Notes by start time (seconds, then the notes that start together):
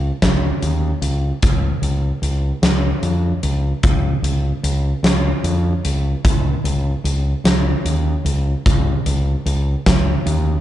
Already playing: C#2
0.22 C#2, kick, snare, closed hi-hat
0.62 D#2, closed hi-hat
1.02 C#2, closed hi-hat
1.43 C#2, kick, closed hi-hat
1.82 C#2, closed hi-hat
2.22 C#2, closed hi-hat
2.62 C#2, snare, closed hi-hat
3.02 F2, closed hi-hat
3.43 C#2, closed hi-hat
3.83 C#2, kick, closed hi-hat
4.22 C#2, closed hi-hat
4.63 C#2, closed hi-hat
5.03 C#2, snare, closed hi-hat
5.44 F2, closed hi-hat
5.85 C#2, closed hi-hat
6.25 C#2, kick, closed hi-hat
6.64 C#2, closed hi-hat
7.04 C#2, closed hi-hat
7.44 C#2, snare, closed hi-hat
7.85 D#2, closed hi-hat
8.25 C#2, closed hi-hat
8.66 C#2, kick, closed hi-hat
9.06 C#2, closed hi-hat
9.46 C#2, closed hi-hat
9.86 C#2, kick, snare, closed hi-hat
10.26 D#2, closed hi-hat